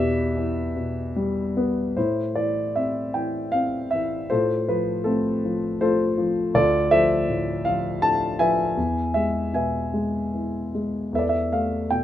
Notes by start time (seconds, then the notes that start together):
Already playing: E2 B2 G4 B4 E5
0.37 E3
0.76 B2
1.16 G3
1.57 B3
1.97 A2 E4 C5
2.35 E3 D5
2.76 C4 E5
3.14 E3 G5
3.52 C4 F5
3.91 E3 E5
4.30 A2 F4 A4 C5
4.68 F3 B4
5.04 A3 C4 F4 A4
5.45 F3
5.81 A3 F4 A4 C5
6.18 F3
6.54 D2 F4 A4 D5
6.91 F3 A4 C5 E5
7.29 A2
7.65 F3 F5
8.02 D3 A5
8.39 F3 B4 E5 G#5
8.77 E2
9.14 G#3 E5
9.54 B2 B4 E5 G#5
9.94 G#3
10.34 E3
10.75 G#3
11.13 E2 A4 B4 E5
11.19 D5
11.29 E5
11.52 A3 F5
11.91 B2 G5